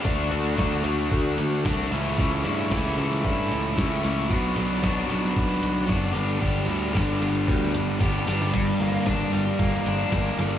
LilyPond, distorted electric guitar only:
\new Staff \with { instrumentName = "Distorted electric guitar" } { \time 4/4 \key g \lydian \tempo 4 = 113 <d a d' fis'>8 <a d' fis'>8 <d a d' fis'>8 <a d' fis'>4. <d a d' fis'>8 <cis e a cis' e'>8 | <cis e a cis' e'>8 <a cis' e'>8 <cis e a cis' e'>8 <a cis' e'>4. <e a cis' e'>8 <a cis' e'>8 | <b, fis b d' fis'>8 <b d' fis'>8 <b, fis b d' fis'>8 <b d' fis'>4. <fis b d' fis'>8 <g, d g b d' g'>8 | <g, d g b d' g'>8 <g b d' g'>8 <g, d g b d' g'>8 <g b d' g'>4. <g b d' g'>8 <g b d' g'>8 |
g,8 bes8 d'8 g8 bes8 d'8 bes8 g8 | }